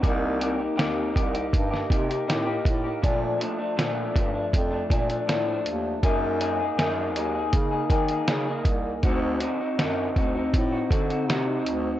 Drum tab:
HH |x-x-x-xxx-xxx-x-|x-x-x-x-x-xxx-x-|x-x-x-x-x-xxx-x-|x-x-x-x-x-xxx-x-|
SD |----o----o--o---|----o-------o---|----o-------o---|----o-------o---|
BD |o-----o-o-o---o-|o-----o-o-o-----|o-------o-o---o-|o-----o-o-o-----|